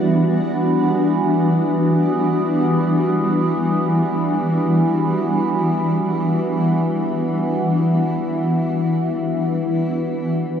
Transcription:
0.00 10.60 E3 medium
0.00 9.81 G3 medium
0.00 9.82 B3 medium
0.00 10.60 B3 medium
0.00 9.82 D4 medium
0.00 9.82 F#4 medium
10.41 10.60 A3 medium

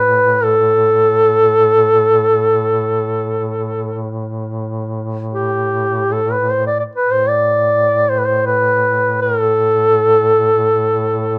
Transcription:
0.00 6.87 A2 soft
0.00 0.45 B4 medium
0.44 4.09 A4 loud
5.33 6.14 G4 medium
6.13 6.34 A4 medium
6.32 6.53 B4 medium
6.51 6.66 C5 medium
6.67 6.78 D5 medium
6.80 6.82 D5 medium
6.95 7.13 B4 medium
7.04 11.39 A2 soft
7.11 7.30 C5 medium
7.29 8.11 D5 medium
8.09 8.20 C5 medium
8.19 8.27 B4 medium
8.25 8.46 C5 medium
8.47 9.19 B4 medium
9.22 9.41 A#4 medium
9.41 11.39 A4 medium

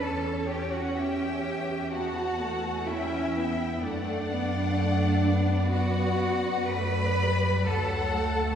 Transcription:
0.01 3.79 E2 medium
0.01 1.89 C#4 medium
0.01 0.49 A4 medium
0.01 0.97 C#5 medium
0.01 0.48 A5 medium
0.48 0.73 G4 medium
0.48 0.72 G5 medium
0.72 0.97 F#4 medium
0.72 0.96 F#5 medium
0.95 1.93 G4 medium
0.95 1.91 E5 soft
0.95 1.92 G5 medium
1.92 2.41 B3 medium
1.92 2.87 F#4 medium
1.92 2.86 F#5 medium
1.92 2.89 A5 medium
2.41 2.89 A3 medium
2.88 3.37 C#4 medium
2.88 3.83 E4 medium
2.88 3.83 E5 medium
2.88 3.35 G5 medium
3.36 3.84 B3 medium
3.36 3.82 G5 medium
3.81 7.63 F#2 medium
3.81 4.30 A3 medium
3.81 5.67 D4 medium
3.81 5.67 D5 medium
3.81 5.72 F#5 medium
4.31 4.76 B3 medium
4.77 5.24 A3 medium
5.25 6.72 B3 medium
5.71 6.71 F#4 medium
5.71 6.70 D5 medium
5.71 6.71 F#5 medium
6.70 7.21 A3 medium
6.70 7.68 B4 loud
6.70 7.67 D5 medium
6.70 7.68 B5 medium
7.22 7.68 G3 medium
7.67 8.55 D2 medium
7.67 8.16 F#3 medium
7.67 8.55 A4 medium
7.67 8.55 F#5 medium
7.67 8.55 A5 medium
8.15 8.55 A3 medium

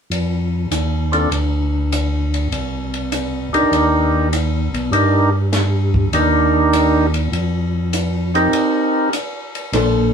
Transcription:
0.10 0.67 F2 medium
0.10 ride soft
0.71 1.27 D#2 medium
0.71 hi-hat pedal medium
0.71 ride soft
1.12 1.29 C4 soft
1.12 1.29 D4 soft
1.12 1.30 F4 soft
1.12 1.30 A4 medium
1.12 ride soft
1.31 2.48 D2 medium
1.31 ride soft
1.92 hi-hat pedal soft
1.92 ride soft
2.34 ride soft
2.51 3.49 C2 medium
2.51 ride soft
2.94 ride soft
3.12 hi-hat pedal soft
3.12 ride soft
3.53 3.62 C2 soft
3.53 4.28 D4 soft
3.53 4.29 D#4 soft
3.53 4.29 G4 soft
3.53 4.29 A#4 medium
3.53 ride soft
3.71 4.69 D#2 medium
3.71 ride soft
4.33 hi-hat pedal soft
4.33 ride soft
4.73 4.91 B1 medium
4.73 ride soft
4.91 6.08 G2 medium
4.91 5.30 D4 soft
4.91 5.30 D#4 soft
4.91 5.30 G4 soft
4.91 5.30 A#4 soft
4.91 ride soft
5.53 snare soft
5.53 hi-hat pedal soft
5.53 ride soft
5.94 kick soft
6.12 7.28 D#2 medium
6.12 7.06 D4 medium
6.12 7.06 D#4 medium
6.12 7.06 G4 medium
6.12 7.07 A#4 medium
6.12 ride soft
6.73 hi-hat pedal soft
6.73 ride medium
7.14 ride soft
7.32 8.48 F2 medium
7.32 ride soft
7.93 hi-hat pedal medium
7.93 ride medium
8.34 9.09 C4 soft
8.34 9.09 D#4 soft
8.34 9.10 G4 soft
8.34 9.10 A#4 medium
8.34 ride soft
8.53 ride medium
9.13 hi-hat pedal soft
9.13 ride soft
9.55 ride soft
9.72 10.13 A#1 medium
9.72 10.10 A#3 medium
9.72 10.10 D4 medium
9.72 10.10 A4 medium
9.72 10.11 C5 medium
9.72 ride medium

